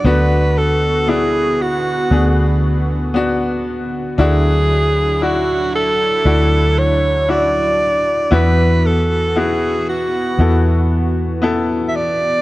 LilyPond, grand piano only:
<<
  \new Staff \with { instrumentName = "Grand piano" } { \time 4/4 \key d \lydian \tempo 4 = 58 <b d' fis'>4 <b d' e'>4 <b d' gis'>4 <b d' fis'>4 | <d' e' fis'>4 <d' e' fis'>4 <d' e' fis'>4 <d' e' fis'>4 | <b e' fis'>4 <b e' fis'>4 <b e' a'>4 <b e' a'>4 | }
  \new Staff \with { instrumentName = "Grand piano" } { \clef bass \time 4/4 \key d \lydian d4. r2 r8 | d4. r2 r8 | e4. r2 r8 | }
>>